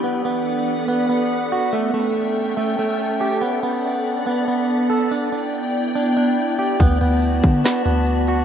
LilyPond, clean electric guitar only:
\new Staff \with { instrumentName = "Clean electric guitar" } { \time 4/4 \key d \major \tempo 4 = 142 b8 b4. b8 b4 fis'8 | a8 a4. a8 a4 g'8 | b8 b4. b8 b4 a'8 | d'8 d'4. d'8 d'4 g'8 |
b8 b4. b8 b4 fis'8 | }